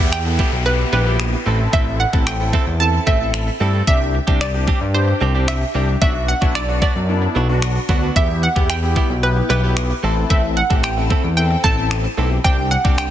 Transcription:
Already playing: downlifter
0.00 E2 G3 B3 E4 G4
0.12 G5, finger snap
0.25 B3 E4 A4, muted clean electric guitar stroke
0.39 G3 B3 E4 G4, kick
0.52 B1, muted clean electric guitar stroke
0.66 B3 E4 G4 B4, muted clean electric guitar stroke
0.79 muted clean electric guitar stroke
0.92 A#1 G3 B3 E4 G4 B4
1.06 G3 B3 E4 G4
1.20 finger snap
1.33 muted clean electric guitar stroke
1.46 A1 A3 C4 E4 A4
1.60 muted clean electric guitar stroke
1.73 A1 A3 C4 E4 A4 E5, kick
1.86 muted clean electric guitar stroke
2.00 F#5, muted clean electric guitar stroke
2.13 A1 A3 C4 E4 A4, kick
2.27 G5, finger snap
2.40 C4 E4 A4, muted clean electric guitar stroke
2.53 A3 C4 E4 A4, kick
2.67 E2, muted clean electric guitar stroke
2.80 C4 E4 A4 A5
2.93 muted clean electric guitar stroke
3.07 A1 A3 C4 E4 A4 E5, kick
3.20 C4 E4 A4, muted clean electric guitar stroke
3.34 finger snap, muted clean electric guitar stroke
3.47 muted clean electric guitar stroke
3.60 G2 A3 C4 E4 A4
3.74 A3 C4 E4 A4
3.87 C2 G3 C4 D4 G4 E5, kick
4.01 muted clean electric guitar stroke
4.14 muted clean electric guitar stroke
4.27 C2 G3 C4 D4 G4, kick
4.41 D5, finger snap, muted clean electric guitar stroke
4.54 C4 D4 G4, muted clean electric guitar stroke
4.67 G3 C4 D4 G4, kick
4.81 G2, muted clean electric guitar stroke
4.94 C4 D4 G4 C5, muted clean electric guitar stroke
5.08 muted clean electric guitar stroke
5.21 C2 G3 C4 D4 G4
5.34 G3 C4 D4 G4
5.48 E5, finger snap, muted clean electric guitar stroke
5.61 muted clean electric guitar stroke
5.75 C2 G3 C4 D4 G4
5.88 muted clean electric guitar stroke
6.01 B1 F#3 B3 D4 F#4 E5, kick
6.15 muted clean electric guitar stroke
6.28 F#5, muted clean electric guitar stroke
6.41 B1 F#3 B3 D4 E4 F#4, kick
6.55 D5, finger snap
6.68 B3 D4 F#4, muted clean electric guitar stroke
6.82 F#3 B3 D4 F#4 D5, kick
6.95 F#2, muted clean electric guitar stroke
7.08 B3 D4 E4
7.22 muted clean electric guitar stroke
7.35 B1 F#3 B3 D4 F#4
7.49 B3 D4 F#4, muted clean electric guitar stroke
7.62 finger snap, muted clean electric guitar stroke
7.76 muted clean electric guitar stroke
7.89 D2 F#3 B3 D4 F#4, kick
8.02 F#3 B3 D4 F#4
8.16 E2 G3 B3 E4 G4 E5, kick
8.29 muted clean electric guitar stroke
8.42 F#5, muted clean electric guitar stroke
8.56 E2 G3 B3 E4 G4, kick
8.70 G5, finger snap
8.83 B3 E4 G4, muted clean electric guitar stroke
8.96 G3 B3 E4 G4, kick
9.09 B1, muted clean electric guitar stroke
9.23 B3 E4 G4 B4, muted clean electric guitar stroke
9.36 muted clean electric guitar stroke
9.49 B1 G3 B3 E4 G4 B4
9.63 G3 B3 E4 G4
9.77 finger snap
9.90 muted clean electric guitar stroke
10.03 A1 A3 C4 E4 A4
10.17 muted clean electric guitar stroke
10.30 A1 A3 C4 E4 A4 E5, kick
10.43 muted clean electric guitar stroke
10.57 F#5, muted clean electric guitar stroke
10.70 A1 A3 C4 E4 G4 A4, kick
10.83 G5, finger snap
10.97 C4 E4 A4, muted clean electric guitar stroke
11.10 A3 C4 E4 A4, kick
11.24 E2, muted clean electric guitar stroke
11.37 C4 E4 A4 G5
11.51 muted clean electric guitar stroke
11.64 A1 A3 C4 E4 A4 A5, kick
11.77 C4 E4 A4, muted clean electric guitar stroke
11.91 finger snap, muted clean electric guitar stroke
12.04 muted clean electric guitar stroke
12.17 B1 A3 C4 E4 G4 A4
12.31 muted clean electric guitar stroke
12.44 C2 G3 C4 D4 G4 G5, kick
12.58 muted clean electric guitar stroke
12.71 F#5, muted clean electric guitar stroke
12.84 C2 G3 C4 D4 G4, kick
12.98 G5, finger snap, muted clean electric guitar stroke

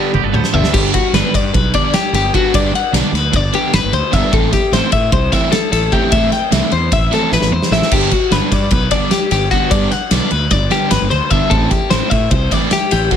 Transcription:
Already playing: G2 D3 G3 B3 D4 F#4 G4 A4
0.13 G1 G4 B4, muted overdriven electric guitar stroke, high tom
0.23 G1 A4
0.33 D2 B3 C5, muted overdriven electric guitar stroke, mid tom
0.44 snare
0.53 G1 G2 D3 G3 B3 D4 E5, floor tom
0.64 snare
0.74 G1 D3 G3 B3 D4 G4, kick, crash
0.94 F#4, muted overdriven electric guitar stroke, kick, ride
1.13 G1 D3 G3 B3 D4 B4, snare, ride
1.34 G2 D5, muted overdriven electric guitar stroke, kick, ride
1.54 B1 B4, muted overdriven electric guitar stroke, kick, ride
1.74 D3 G3 B3 D4 D5, kick, ride
1.94 G4, muted overdriven electric guitar stroke, snare, ride
2.13 G1 G4, muted overdriven electric guitar stroke, snare, ride
2.34 D3 G3 B3 D4 F#4, kick, ride
2.53 G2 D3 G3 B3 D4 D5, kick, ride
2.73 F#5, muted overdriven electric guitar stroke, ride
2.93 B1 D3 G3 B3 D4 D5, snare, ride
3.12 D2 B4, muted overdriven electric guitar stroke, snare, ride
3.32 G1 D5, muted overdriven electric guitar stroke, kick, ride
3.53 D3 G3 B3 D4 G4, ride
3.73 G1 B4, muted overdriven electric guitar stroke, snare, ride
3.83 G1
3.92 D2 C5, muted overdriven electric guitar stroke, ride
4.12 G1 D3 G3 B3 D4 E5, kick, snare, ride
4.32 A1 E3 A3 C4 E4 A4, kick, ride
4.52 G4, muted overdriven electric guitar stroke, kick, snare, ride
4.72 A1 E3 A3 C4 E4 C5, snare, ride
4.92 A2 E5, muted overdriven electric guitar stroke, kick, ride
5.12 C2 C5, muted overdriven electric guitar stroke, kick, ride
5.32 E3 A3 C4 E4 E5, kick, snare, ride
5.52 A4, muted overdriven electric guitar stroke, snare, ride
5.72 A1 A4, muted overdriven electric guitar stroke, snare, ride
5.92 E3 A3 C4 E4 G4, kick, ride
6.12 A2 E3 A3 C4 E4 E5, kick, ride
6.32 G5, muted overdriven electric guitar stroke, snare, ride
6.51 C2 E3 A3 C4 E4 E5, snare, ride
6.71 E2 C5, muted overdriven electric guitar stroke, ride
6.92 A1 E5, muted overdriven electric guitar stroke, kick, snare, ride
7.11 E3 A3 C4 E4 A4, snare, ride
7.32 A1 B4, muted overdriven electric guitar stroke, snare
7.42 A1, snare
7.50 E2 C5, muted overdriven electric guitar stroke
7.62 snare
7.71 A1 E3 A3 C4 E4 E5, snare
7.82 snare
7.91 G1 D3 G3 B3 D4 G4, kick, crash, ride
8.11 F#4, muted overdriven electric guitar stroke, kick, ride
8.31 G1 D3 G3 B3 D4 B4, snare, ride
8.51 G2 D5, muted overdriven electric guitar stroke, kick, snare, ride
8.71 B1 B4, muted overdriven electric guitar stroke, kick, snare, ride
8.91 D3 G3 B3 D4 D5, kick, snare, ride
9.11 G4, muted overdriven electric guitar stroke, snare, ride
9.31 G1 G4, muted overdriven electric guitar stroke, snare, ride
9.51 D3 G3 B3 D4 F#4, kick, snare, ride
9.71 G2 D3 G3 B3 D4 D5, kick, ride
9.91 F#5, muted overdriven electric guitar stroke, snare, ride
10.11 B1 D3 G3 B3 D4 D5, snare, ride
10.31 D2 B4, muted overdriven electric guitar stroke, ride
10.51 G1 D5, muted overdriven electric guitar stroke, kick, snare, ride
10.71 D3 G3 B3 D4 G4, snare, ride
10.91 G1 B4, muted overdriven electric guitar stroke, snare, ride
11.02 G1
11.10 D2 C5, muted overdriven electric guitar stroke, ride
11.30 G1 D3 G3 B3 D4 E5, kick, ride
11.50 A1 E3 A3 C4 E4 A4, kick, ride
11.71 G4, muted overdriven electric guitar stroke, kick, snare, ride
11.90 A1 E3 A3 C4 E4 C5, snare, ride
12.10 A2 E5, muted overdriven electric guitar stroke, kick, ride
12.31 C2 C5, muted overdriven electric guitar stroke, kick, ride
12.51 E3 A3 C4 E4 D5, kick, ride
12.71 G4, muted overdriven electric guitar stroke, snare, ride
12.91 A1 G4, muted overdriven electric guitar stroke, snare, ride
13.11 E3 A3 C4 E4 F#4, kick, ride

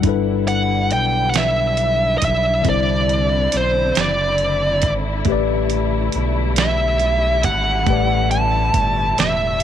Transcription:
0.00 D3 G3 D4 E4, kick, closed hi-hat
0.05 G1 E4 A4
0.09 B4
0.47 F#5, closed hi-hat
0.91 B1 G5, closed hi-hat
1.30 F#5, closed hi-hat
1.36 E5, snare
1.77 closed hi-hat
2.18 D#5, closed hi-hat
2.22 B1 E5, kick
2.62 D3 C4 E4, kick, closed hi-hat
2.66 C2 C5 D5
3.09 closed hi-hat
3.52 B1, closed hi-hat
3.57 C5
3.95 F#1, snare, closed hi-hat
4.01 D5
4.38 closed hi-hat
4.82 G#1, kick, closed hi-hat
5.25 A1 G3 A3 G4, kick, closed hi-hat
5.30 B4 D5
5.70 closed hi-hat
6.12 B1, closed hi-hat
6.56 E5, snare, closed hi-hat
6.99 closed hi-hat
7.43 G#1 F#5, kick, closed hi-hat
7.84 A2 A3, kick, closed hi-hat
7.88 A1 G4 B4
7.92 D5
8.31 A5, closed hi-hat
8.74 G1, kick, closed hi-hat
9.18 E1 E5, snare, closed hi-hat
9.60 closed hi-hat

